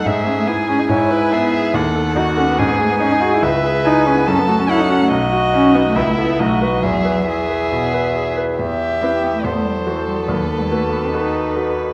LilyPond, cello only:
\new Staff \with { instrumentName = "Cello" } { \time 4/4 \key e \major \tempo 4 = 142 gis8 cis'16 a16 b8 cis'16 dis'16 e'4. r8 | r4 dis'8 cis'16 b16 cis'16 b16 a16 b16 cis'16 dis'16 fis'16 e'16 | r4 dis'8 cis'16 b16 cis'16 b16 a16 cis'16 e'16 dis'16 cis'16 a16 | r4 cis'8 b16 a16 b16 a16 b8 a8 gis16 fis16 |
fis4 e2 r4 | \key e \minor r4 c'8 b16 a16 b16 a16 g16 fis16 e8 g16 fis16 | fis8 b16 g16 a8 b16 c'16 dis'4. r8 | }